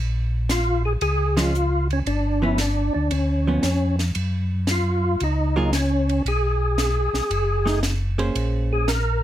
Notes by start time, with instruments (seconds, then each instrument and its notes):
Already playing: tonewheel organ A#1
0.49 tonewheel organ F4, snare, hi-hat pedal, ride
0.85 tonewheel organ G#4
1.01 tonewheel organ C#2 G#4, ride
1.37 hollow-body jazz guitar F3 G#3 C#4, tonewheel organ F4, snare, ride
1.54 hi-hat pedal
1.90 tonewheel organ C#4, ride
2.06 tonewheel organ G1 D4, ride
2.42 hollow-body jazz guitar F3 B3 C#4, tonewheel organ E4
2.58 tonewheel organ D4, snare, hi-hat pedal, ride
2.94 tonewheel organ D2 D4
3.11 tonewheel organ D2 C#4, ride
3.47 hollow-body jazz guitar F3 B3 C#4
3.63 tonewheel organ F2, snare, hi-hat pedal, ride
3.99 snare, ride
4.15 tonewheel organ F#2, ride
4.67 tonewheel organ F4, snare, hi-hat pedal, ride
5.20 tonewheel organ C#2 D#4, ride
5.56 hollow-body jazz guitar F#3 A#3 F4 G#4
5.73 tonewheel organ C#4, snare, hi-hat pedal, ride
6.09 ride
6.25 tonewheel organ B1 G#4, ride
6.78 snare, hi-hat pedal, ride
7.13 tonewheel organ B1, snare
7.30 tonewheel organ F#1, ride
7.66 hollow-body jazz guitar A3 D#4 G#4, snare
7.83 snare, hi-hat pedal, ride
8.18 hollow-body jazz guitar A#3 C#4 G#4 C5, ride
8.35 tonewheel organ A#1, ride
8.73 tonewheel organ G#4
8.88 tonewheel organ A#4, snare, hi-hat pedal, ride